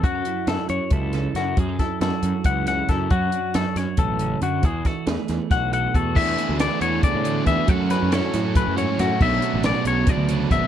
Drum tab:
CC |-------|-------|-------|-------|
HH |xxxxxxx|xxxxxxx|xxxxxxx|xxxxxxx|
SD |--o--oo|-oo--oo|--oo---|-oooo--|
BD |o---o--|oo--o-o|o---o--|oo--o-o|

CC |x------|-------|x------|
HH |-xxxxxx|xxxxxxx|-xxxxxx|
SD |--o---o|-ooo--o|--o---o|
BD |o---o-o|o---o--|o---o-o|